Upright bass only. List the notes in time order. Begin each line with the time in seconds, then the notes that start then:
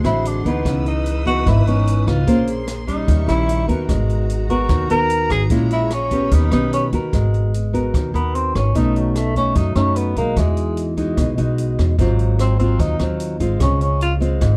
0.04 A1
0.45 D2
0.66 C#2
1.47 G#1
1.66 G#1
2.07 C#2
2.27 A#1
3.08 D#2
3.28 A#1
3.69 D#2
3.89 G#1
4.69 D#2
4.90 D#2
5.30 G#1
5.50 A#1
6.32 D#2
6.52 B1
6.93 D#2
7.13 G#1
7.94 D#2
8.14 D#2
8.55 G#1
8.75 B1
9.56 F#2
9.76 F#2
10.16 B1
10.37 E2
11.18 B1
11.38 B1
11.79 E2
11.99 G#1
12.80 D#2
13.00 D#2
13.40 G#1
13.61 C#2
14.42 G#1